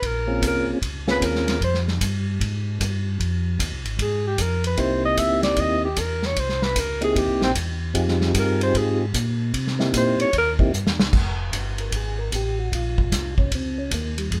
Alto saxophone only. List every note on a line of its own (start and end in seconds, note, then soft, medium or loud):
0.06 0.44 A#4 medium
0.47 0.69 A#4 medium
1.10 1.26 B4 loud
1.24 1.63 A#4 medium
1.64 1.78 C5 medium
4.02 4.24 G#4 medium
4.27 4.43 G4 medium
4.41 4.66 A#4 medium
4.67 4.82 B4 medium
4.80 5.05 C5 medium
5.05 5.20 D#5 loud
5.19 5.43 E5 loud
5.43 5.62 D5 medium
5.60 5.84 D#5 loud
5.85 6.01 G4 medium
5.99 6.27 A#4 medium
6.26 6.41 C#5 medium
6.40 6.65 C5 medium
6.63 6.81 B4 medium
6.79 7.04 A#4 medium
7.04 7.20 G#4 medium
7.18 7.43 G4 medium
7.43 7.51 C4 medium
8.39 8.61 A#4 medium
8.63 8.79 C5 loud
8.78 9.02 G#4 medium
9.97 10.20 C5 medium
10.21 10.33 C#5 loud
10.38 10.52 A#4 medium